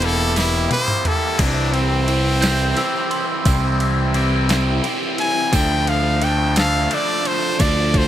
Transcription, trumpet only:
0.05 A4
0.39 E4
0.73 C5
1.08 A4
1.41 D4
1.73 C4
5.20 G#5
5.55 G5
5.89 F5
6.24 G5
6.59 F5
6.94 D5
7.27 C5
7.60 D5
7.97 C5

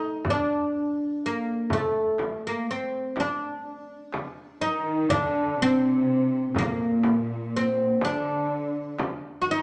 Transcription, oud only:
Already playing: D#4
0.30 D4
1.26 A#3
1.73 A3
2.47 A#3
2.71 C4
3.20 D4
4.61 D#4
5.10 D4
5.62 C4
6.58 A#3
7.57 C4
8.05 D4
9.42 F#4
9.51 D#4

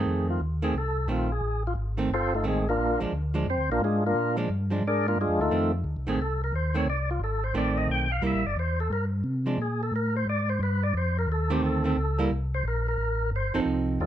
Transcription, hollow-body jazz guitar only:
Already playing: D#3 A3 C4
0.62 D#3 A3 C4
1.08 D#3 A3 C4
1.97 D#3 A3 C4
2.44 D#3 A3 C4
3.00 F3 G#3 D4
3.34 F3 G#3 D4
4.37 F3 G#3 D4
4.70 F3 G#3 D4
5.51 D#3 A3 C4
6.07 D#3 A3 C4
6.74 D#3 A3 C4
7.54 D#3 A3 C4
8.22 G3 A#3 E4
9.46 F3 G#3 D4
11.50 D#3 A3 C4
11.84 D#3 A3 C4
12.19 G3 A#3 E4
13.54 F3 C4 D#4 A4

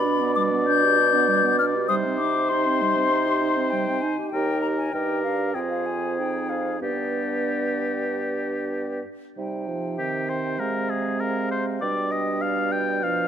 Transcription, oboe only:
Already playing: D5
1.89 C5
4.33 A#4
4.95 A#4
5.54 G#4
6.82 G4
9.98 G4
10.29 C5
10.59 A#4
10.90 G#4
11.20 A#4
11.51 C5
11.81 D5
12.11 D#5
12.42 F5
12.72 G5
13.03 F5

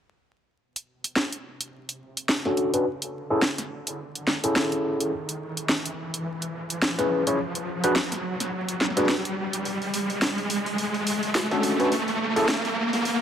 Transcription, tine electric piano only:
2.45 C#4 D4 F#4 A4
2.74 C#4 D4 F#4 B4
3.30 C#4 E4 G#4 A4
4.44 C#4 E4 G#4 A4
6.98 C#4 E4 G#4 B4
7.27 C#4 E4 G#4 C#5
7.84 D4 F#4 G#4 B4
8.97 D4 F#4 G#4 B4
11.51 C#4 D4 F#4 A4
11.80 C#4 D4 F#4 B4
12.36 C#4 E4 G#4 A4

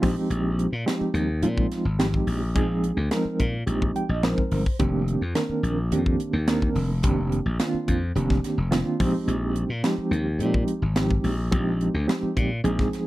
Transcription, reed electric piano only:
0.02 F3 G#3 C4 D#4 G4
0.86 F3 G#3 C4 D#4 G4
1.43 F3 G#3 C4 D#4 F4
1.99 F3 G#3 C4 D#4 G4
2.55 F3 G#3 C4 D#4 G#4
3.11 F3 G#3 C4 D#4 A#4
3.67 F3 G#3 C4 D#4 G4
3.96 G5
4.10 D#5
4.23 F3 G#3 C4 D#4 A#4 C5
4.80 D#3 A#3 C4 D4 G4
5.35 D#3 A#3 C4 D4 A#4
5.93 D#3 A#3 C4 D4 G4
6.48 D#3 A#3 C4 D4 A#4
7.04 D#3 A#3 C4 D4 G4
7.60 D#3 A#3 C4 D4 F4
8.16 D#3 A#3 C4 D4 G4
8.71 D#3 A#3 C4 D4 F4
9.00 F3 G#3 C4 D#4 G4
9.83 F3 G#3 C4 D#4 G4
10.40 F3 G#3 C4 D#4 G4
10.96 F3 G#3 C4 D#4 G4
11.51 F3 G#3 C4 D#4 G4
12.08 F3 G#3 C4 D#4 G4
12.64 F3 G#3 C4 D#4 G#4

